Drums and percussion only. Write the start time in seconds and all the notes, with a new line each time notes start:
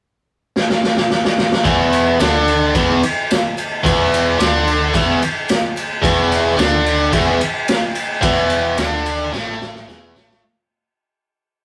0.56 snare
0.70 snare
0.83 snare
0.97 snare
1.10 snare
1.25 snare
1.38 snare
1.52 snare
1.65 kick, ride
1.92 ride, tambourine
2.19 snare, ride, tambourine
2.48 ride
2.75 kick, ride, tambourine
3.03 ride, tambourine
3.30 snare, ride, tambourine
3.57 ride, tambourine
3.85 kick, ride
4.12 ride, tambourine
4.39 snare, ride, tambourine
4.67 ride
4.93 kick, ride, tambourine
5.22 ride, tambourine
5.48 snare, ride, tambourine
5.76 ride, tambourine
6.04 kick, ride
6.32 ride, tambourine
6.58 snare, ride, tambourine
6.86 ride
7.13 kick, ride, tambourine
7.41 ride, tambourine
7.68 snare, ride, tambourine
7.95 ride, tambourine
8.22 kick, ride
8.50 ride, tambourine
8.77 snare, ride, tambourine
9.06 ride
9.34 snare, tambourine
9.61 snare, tambourine
9.75 snare
9.89 snare, tambourine
10.16 snare, tambourine
10.31 snare